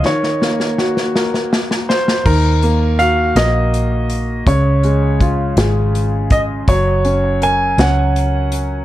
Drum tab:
CC |------------|x-----------|------------|------------|
HH |------------|--x-x-x-x-x-|x-x-x-x-x-x-|x-x-x-x-x-x-|
SD |oooooooooooo|------o-----|------o-----|------o-----|
BD |------------|o-----------|o---o-----o-|o-----------|